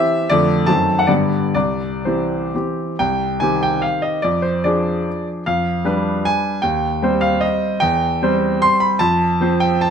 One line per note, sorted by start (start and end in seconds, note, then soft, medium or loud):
0.00 0.26 E3 soft
0.00 0.26 C4 soft
0.00 0.26 G4 soft
0.00 0.29 E5 medium
0.29 0.68 F2 medium
0.29 0.65 D3 soft
0.29 0.66 A3 soft
0.29 0.66 A4 soft
0.29 0.68 D5 medium
0.66 1.08 F#2 soft
0.66 1.05 D#3 soft
0.66 1.05 C4 soft
0.66 1.06 A4 soft
0.66 0.98 A5 medium
0.99 1.09 F#5 medium
1.07 1.53 G2 soft
1.07 1.50 D3 soft
1.07 1.50 B3 soft
1.07 1.51 G4 soft
1.07 1.53 D5 medium
1.54 2.04 C2 soft
1.54 2.05 D5 medium
2.05 2.50 E3 soft
2.05 2.50 C4 soft
2.05 2.50 G4 soft
2.05 2.53 C5 soft
2.54 2.95 E3 soft
2.54 2.95 C4 soft
2.54 2.95 G4 soft
2.99 3.40 C2 soft
2.99 3.41 G5 medium
3.40 4.21 D#3 soft
3.40 4.21 C4 soft
3.40 4.21 G4 soft
3.40 3.62 G#5 medium
3.63 3.84 G5 medium
3.82 4.03 F5 medium
4.02 4.23 D#5 medium
4.22 4.63 F2 soft
4.22 4.43 D5 medium
4.42 4.64 C5 medium
4.64 5.43 F3 soft
4.64 5.43 D4 soft
4.64 5.43 G#4 soft
4.64 5.27 D5 medium
5.46 5.85 F2 soft
5.46 6.24 F5 medium
5.85 6.58 G3 soft
5.85 6.58 D4 soft
5.85 6.58 B4 soft
6.25 6.63 G#5 medium
6.62 7.02 D#2 soft
6.62 7.23 G5 medium
7.02 7.77 G3 soft
7.02 7.77 C4 soft
7.02 7.77 C5 medium
7.21 7.42 F5 medium
7.41 7.80 D#5 medium
7.80 8.20 E2 medium
7.80 8.61 G5 medium
8.22 8.96 G3 medium
8.22 8.97 C4 medium
8.22 8.97 C5 soft
8.62 8.81 C6 medium
8.80 9.00 B5 medium
8.99 9.39 F2 medium
8.99 9.61 A5 medium
9.41 9.90 F3 medium
9.41 9.90 C4 medium
9.41 9.90 C5 medium
9.60 9.82 G5 medium
9.81 9.90 A5 medium